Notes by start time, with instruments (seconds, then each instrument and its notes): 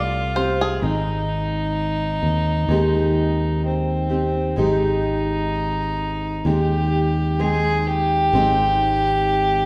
Already playing: fingered electric bass C2, steel-string acoustic guitar A3 C4 F4 G4, fiddle F4
0.35 steel-string acoustic guitar C4 F4 G4, five-string banjo C5
0.61 five-string banjo G#4
0.81 fingered electric bass G#1, steel-string acoustic guitar G#3 C4 D#4, fiddle D#4
2.23 fingered electric bass D#2
2.69 fingered electric bass D#2, steel-string acoustic guitar G#3 C4 D#4 G4
3.65 fiddle C4
4.10 steel-string acoustic guitar C4 D#4 G4
4.56 fingered electric bass G#1, steel-string acoustic guitar G#3 C4 D#4 G4, fiddle D#4
6.45 fingered electric bass D#2, steel-string acoustic guitar G#3 C4 D#4 G4, fiddle G4
7.39 steel-string acoustic guitar G#3 C4 D#4, fiddle G#4
7.86 fiddle G4
8.33 fingered electric bass G#1, steel-string acoustic guitar G#3 C4 D#4 G4